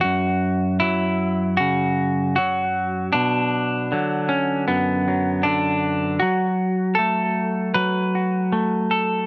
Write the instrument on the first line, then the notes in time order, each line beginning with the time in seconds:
clean electric guitar
0.01 F#2 F#4
0.80 F#3 E4
1.57 C#3 F#4
2.36 F#3 F#4
3.13 B2 D4
3.92 D3 F#3
4.29 C#4
4.68 F#2 B3
5.08 F#3
5.43 D3 D4
6.20 F#3 F#4
6.95 A3 A4
7.74 F#3 B4
8.15 F#4
8.52 A3
8.91 A4